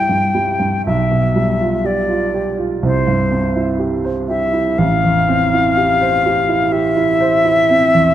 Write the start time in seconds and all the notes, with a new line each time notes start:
Already playing: C2 G3 E4 G4 E5 G5
0.09 G2
0.35 G3
0.59 G2
0.86 B1 E5
1.11 B2
1.36 G3
1.61 F4
1.85 G4 D5
2.08 F4
2.34 G4
2.58 F4
2.83 C2 C5
3.07 G2
3.31 C4
3.56 E4
3.79 G4
4.05 C5
4.28 G4 E5
4.53 E4
4.78 A1 F5
5.04 E2
5.29 C4
5.54 E4
5.77 G4
6.01 C5
6.26 G4
6.49 E4
6.72 G4 E5
6.97 E4
7.21 C5
7.45 E4
7.70 C4
7.94 E2